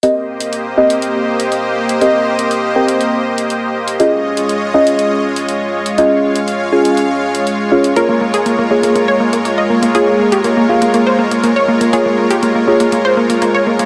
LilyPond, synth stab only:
\new Staff \with { instrumentName = "Synth stab" } { \time 4/4 \key c \phrygian \tempo 4 = 121 <c' g' bes' ees''>4. <c' g' bes' ees''>2~ <c' g' bes' ees''>8 | <c' g' bes' ees''>4. <c' g' bes' g''>2~ <c' g' bes' g''>8 | <des' f' aes' ees''>4. <des' f' aes' ees''>2~ <des' f' aes' ees''>8 | <des' f' aes' ees''>4. <des' f' aes' aes''>2 <des' f' aes' des''>8 |
<bes f' aes' des''>4. <bes f' aes' des''>2~ <bes f' aes' des''>8 | <bes f' aes' des''>4. <bes f' aes' f''>2~ <bes f' aes' f''>8 | <bes f' aes' des''>4. <bes f' aes' des''>2~ <bes f' aes' des''>8 | }